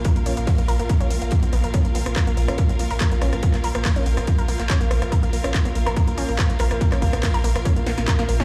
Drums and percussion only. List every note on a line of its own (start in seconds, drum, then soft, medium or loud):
0.04 kick loud
0.04 closed hi-hat medium
0.04 ride medium
0.16 closed hi-hat medium
0.16 ride soft
0.26 open hi-hat loud
0.26 ride medium
0.37 closed hi-hat medium
0.37 ride soft
0.47 kick loud
0.47 snare loud
0.47 closed hi-hat medium
0.47 open hi-hat medium
0.58 closed hi-hat medium
0.58 ride soft
0.68 open hi-hat loud
0.68 ride medium
0.79 closed hi-hat medium
0.79 ride soft
0.89 kick loud
0.89 closed hi-hat medium
0.89 ride medium
1.01 closed hi-hat medium
1.11 open hi-hat loud
1.11 ride medium
1.22 closed hi-hat medium
1.22 ride soft
1.31 kick loud
1.31 closed hi-hat medium
1.31 ride medium
1.43 closed hi-hat medium
1.43 ride soft
1.53 open hi-hat loud
1.53 ride medium
1.64 closed hi-hat medium
1.74 kick loud
1.74 closed hi-hat medium
1.74 ride medium
1.85 closed hi-hat soft
1.95 open hi-hat loud
1.95 ride medium
2.06 cross-stick loud
2.06 closed hi-hat medium
2.16 kick loud
2.16 snare loud
2.16 clap loud
2.16 closed hi-hat medium
2.16 ride medium
2.27 closed hi-hat soft
2.27 ride soft
2.37 open hi-hat loud
2.37 ride medium
2.48 cross-stick loud
2.48 closed hi-hat medium
2.58 kick loud
2.58 closed hi-hat medium
2.58 ride medium
2.69 closed hi-hat medium
2.69 ride soft
2.79 open hi-hat loud
2.79 ride medium
2.90 open hi-hat medium
3.00 kick loud
3.00 snare loud
3.00 clap loud
3.00 closed hi-hat medium
3.00 ride medium
3.12 closed hi-hat soft
3.22 cross-stick loud
3.22 open hi-hat loud
3.22 ride medium
3.33 cross-stick medium
3.33 closed hi-hat medium
3.43 kick loud
3.43 closed hi-hat medium
3.43 ride medium
3.54 clap soft
3.54 closed hi-hat soft
3.54 ride soft
3.64 open hi-hat loud
3.64 ride medium
3.75 cross-stick loud
3.75 closed hi-hat soft
3.75 ride soft
3.85 kick loud
3.85 snare loud
3.85 clap loud
3.85 closed hi-hat medium
3.85 open hi-hat medium
3.96 closed hi-hat soft
3.96 ride soft
4.06 open hi-hat loud
4.06 ride medium
4.17 cross-stick loud
4.17 closed hi-hat medium
4.17 ride soft
4.27 kick loud
4.27 closed hi-hat medium
4.27 ride medium
4.38 closed hi-hat medium
4.48 open hi-hat loud
4.48 ride medium
4.59 clap soft
4.59 closed hi-hat medium
4.59 ride soft
4.70 kick loud
4.70 snare loud
4.70 clap loud
4.70 closed hi-hat medium
4.70 ride medium
4.81 closed hi-hat medium
4.91 cross-stick loud
4.91 open hi-hat loud
4.91 ride medium
5.02 cross-stick medium
5.02 closed hi-hat medium
5.12 kick loud
5.12 closed hi-hat medium
5.12 ride medium
5.23 closed hi-hat medium
5.33 open hi-hat loud
5.33 ride medium
5.44 cross-stick medium
5.44 closed hi-hat medium
5.54 kick loud
5.54 snare loud
5.54 clap loud
5.54 closed hi-hat medium
5.54 ride medium
5.65 closed hi-hat medium
5.65 ride soft
5.75 open hi-hat loud
5.75 ride medium
5.87 cross-stick loud
5.87 closed hi-hat medium
5.97 kick loud
5.97 closed hi-hat medium
5.97 ride medium
6.07 closed hi-hat medium
6.07 ride soft
6.17 open hi-hat loud
6.17 ride medium
6.29 open hi-hat medium
6.38 kick loud
6.38 snare loud
6.38 clap loud
6.38 closed hi-hat medium
6.38 ride medium
6.50 closed hi-hat medium
6.59 cross-stick loud
6.59 open hi-hat loud
6.59 ride medium
6.71 cross-stick loud
6.71 closed hi-hat medium
6.81 kick loud
6.81 closed hi-hat medium
6.81 ride medium
6.92 cross-stick medium
6.92 clap soft
6.92 closed hi-hat medium
6.92 ride soft
7.02 kick medium
7.02 open hi-hat loud
7.02 ride medium
7.13 cross-stick loud
7.13 closed hi-hat medium
7.13 ride soft
7.23 kick loud
7.23 snare loud
7.23 clap loud
7.23 closed hi-hat medium
7.23 open hi-hat medium
7.34 closed hi-hat medium
7.34 ride soft
7.44 open hi-hat loud
7.44 ride medium
7.55 cross-stick loud
7.55 closed hi-hat medium
7.55 ride soft
7.65 kick loud
7.65 closed hi-hat medium
7.65 ride medium
7.76 closed hi-hat medium
7.87 snare medium
7.87 open hi-hat loud
7.87 ride medium
7.98 snare medium
7.98 closed hi-hat medium
7.98 ride soft
8.07 kick loud
8.07 snare loud
8.07 snare medium
8.07 clap loud
8.07 closed hi-hat medium
8.07 ride loud
8.19 snare medium
8.19 closed hi-hat medium
8.29 open hi-hat loud
8.29 ride medium
8.40 snare medium
8.40 open hi-hat medium